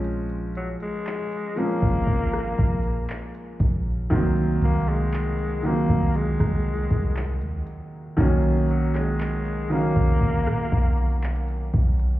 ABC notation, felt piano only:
X:1
M:4/4
L:1/16
Q:1/4=59
K:Bbm
V:1 name="Felt piano"
[F,A,CD]4 z2 [F,A,CD]4- [F,A,CD] z4 z | [E,G,B,C]4 z2 [E,G,B,C]4- [E,G,B,C] z4 z | [E,G,B,D]4 z2 [E,G,B,D]4- [E,G,B,D] z4 z |]